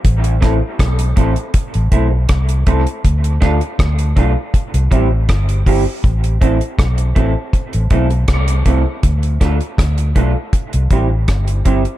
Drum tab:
HH |xxx-xxxxxxx-xxxx|xxxxxxx-xxx-xxo-|xxxxxxx-xxxxxxx-|xxxxxxx-xxx-xxxx|
SD |--r-r-------r---|--r-r-------r---|----r-------r---|--r-r-------r---|
BD |o-o-o-o-o-o-o-o-|o-o-o-o-o-o-o-o-|o-o-o-o-o-o-o-o-|o-o-o-o-o-o-o-o-|